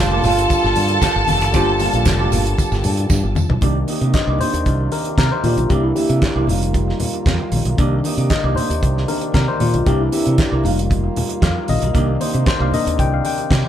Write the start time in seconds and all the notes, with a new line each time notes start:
Already playing: F1 D3 G3 A#3 D4 F4 A4 A#4 A5
0.00 clap
0.11 A#3 F4 G4 D5
0.23 G1 A#3 F4 G4 F5, open hi-hat, tambourine, low conga
0.37 muted clean electric guitar stroke, closed hi-hat, tambourine
0.49 muted clean electric guitar stroke, kick, closed hi-hat, tambourine, muted conga
0.64 G1, muted clean electric guitar stroke, snare
0.76 G2, open hi-hat, tambourine, muted conga
0.88 muted clean electric guitar stroke, closed hi-hat
1.01 muted clean electric guitar stroke, kick, snare, clap, closed hi-hat, tambourine, high conga
1.16 G1, muted clean electric guitar stroke
1.27 F1, open hi-hat, tambourine, high conga
1.41 F#1, muted clean electric guitar stroke, closed hi-hat, tambourine
1.53 G1 G3 A#3 D4 F4 G4 C5 D5, kick, closed hi-hat, tambourine, muted conga
1.79 A#3 F4 G4 F5, open hi-hat, tambourine, muted conga
1.93 A#1 A#3 F4 G4 F5, closed hi-hat, tambourine
2.05 F1, muted clean electric guitar stroke, kick, snare, clap, closed hi-hat, tambourine, high conga
2.19 A#3 F4 G4 D5
2.31 G1 A#3 F4 G4 F5, open hi-hat, tambourine, low conga
2.46 muted clean electric guitar stroke, closed hi-hat
2.57 muted clean electric guitar stroke, kick, closed hi-hat, tambourine, muted conga
2.72 G1, muted clean electric guitar stroke, snare, tambourine
2.84 G2, open hi-hat, tambourine, muted conga, low conga
2.97 muted clean electric guitar stroke, closed hi-hat
3.09 G2, muted clean electric guitar stroke, kick, snare, tambourine, high conga
3.23 G1, muted clean electric guitar stroke
3.35 mid tom, tambourine, high conga
3.49 B1, muted clean electric guitar stroke, floor tom
3.61 C2 C3 D#3 A#3 D4 D#4 G4 D5, kick, closed hi-hat, muted conga
3.88 A#3 D#4 G4 D#5, open hi-hat, muted conga
4.01 C3 A#3 D#4 G4 D#5, closed hi-hat
4.14 D#5, muted clean electric guitar stroke, kick, snare, clap, closed hi-hat, high conga
4.27 C2 A#3 D#4 G4 D5
4.39 A#3 D#4 G4 C5 D#5, open hi-hat, low conga
4.54 D#2, muted clean electric guitar stroke, closed hi-hat
4.65 C2, muted clean electric guitar stroke, kick, closed hi-hat, muted conga
4.80 muted clean electric guitar stroke
4.92 A#4, open hi-hat, muted conga
5.05 muted clean electric guitar stroke, closed hi-hat
5.18 C3 A#4, muted clean electric guitar stroke, kick, snare, clap, closed hi-hat, high conga
5.32 C5, muted clean electric guitar stroke
5.44 A#2 A#3 D#4 F4 G4 D5, open hi-hat, high conga
5.57 B1, muted clean electric guitar stroke, closed hi-hat, high conga
5.69 C2 E3 A#3 D4 E4 G4, kick, closed hi-hat, muted conga
5.73 D5
5.83 E4
5.95 A#3 E4 G4 E5, open hi-hat, muted conga
6.09 C3 A#3 E4 G4 E5, closed hi-hat
6.22 muted clean electric guitar stroke, kick, snare, clap, closed hi-hat, high conga
6.35 C2 A#3 E4 G4 D5
6.47 F1 D#3 G3 A#3 C4 D#4 F4 G4 A#4 F5, open hi-hat, low conga
6.61 muted clean electric guitar stroke, closed hi-hat
6.73 muted clean electric guitar stroke, kick, closed hi-hat, muted conga
6.88 muted clean electric guitar stroke, snare
7.00 open hi-hat, muted conga, low conga
7.13 muted clean electric guitar stroke, closed hi-hat
7.26 F2, muted clean electric guitar stroke, kick, snare, clap, closed hi-hat, high conga
7.40 muted clean electric guitar stroke
7.52 A#1, open hi-hat, high conga
7.65 B1, muted clean electric guitar stroke, closed hi-hat, high conga
7.77 C2 C3 D#3 A#3 D4 D#4 G4 D5, kick, closed hi-hat, muted conga
8.04 A#3 D#4 G4 D#5, open hi-hat, muted conga
8.17 C3 A#3 D#4 G4 D#5, closed hi-hat
8.30 D#5, muted clean electric guitar stroke, kick, snare, clap, closed hi-hat, high conga
8.44 C2 A#3 D#4 G4 D5
8.55 A#3 D#4 G4 C5 D#5, open hi-hat, low conga
8.70 D#2, muted clean electric guitar stroke, closed hi-hat
8.81 C2, muted clean electric guitar stroke, kick, closed hi-hat, muted conga
8.97 muted clean electric guitar stroke, snare
9.08 D#3 A#3 D4 A#4, open hi-hat, muted conga
9.21 muted clean electric guitar stroke, closed hi-hat
9.34 C3 A#4, muted clean electric guitar stroke, kick, snare, clap, closed hi-hat, high conga
9.48 C5, muted clean electric guitar stroke
9.60 A#2 F4, open hi-hat, high conga
9.74 B1, muted clean electric guitar stroke, closed hi-hat, high conga
9.86 C2 C3 E3 A#3 C4 D4 E4 G4 A#4 D5, kick, closed hi-hat
10.01 E4
10.12 C4 E4 G4 A#4 E5, open hi-hat, muted conga
10.26 C3 C4 E4 A#4 E5, closed hi-hat
10.38 muted clean electric guitar stroke, kick, snare, clap, closed hi-hat, high conga
10.51 C2 C4 E4 A#4 D5
10.64 F1 D#3 G3 A#3 D#4 F4 G4 A#4 F5, open hi-hat, low conga
10.77 muted clean electric guitar stroke, closed hi-hat
10.90 muted clean electric guitar stroke, kick, closed hi-hat, muted conga
11.04 muted clean electric guitar stroke
11.16 open hi-hat, muted conga, low conga
11.29 muted clean electric guitar stroke, closed hi-hat
11.41 F2 F5, muted clean electric guitar stroke, kick, snare, clap, closed hi-hat, high conga
11.55 muted clean electric guitar stroke
11.68 A#1 D#5, open hi-hat, high conga
11.82 B1, muted clean electric guitar stroke, closed hi-hat, high conga
11.94 C2 C3 D#3 A#3 D4 D#4 G4 D5, kick, closed hi-hat, muted conga
12.20 A#3 D#4 G4 C5 D#5, open hi-hat, muted conga
12.33 C3 A#3 D#4 G4 D#5, closed hi-hat
12.46 C5, muted clean electric guitar stroke, kick, snare, clap, closed hi-hat, high conga
12.60 C2 A#3 D#4 G4 D5 F5
12.72 D#3 A#3 D4 D#4 G4 D#5, open hi-hat, low conga
12.87 D#2, muted clean electric guitar stroke, closed hi-hat
12.98 C2 G5, muted clean electric guitar stroke, kick, closed hi-hat, muted conga
13.13 F5, muted clean electric guitar stroke
13.25 G5, open hi-hat, muted conga
13.38 muted clean electric guitar stroke, closed hi-hat
13.50 C3, muted clean electric guitar stroke, kick, snare, clap, closed hi-hat, high conga
13.64 muted clean electric guitar stroke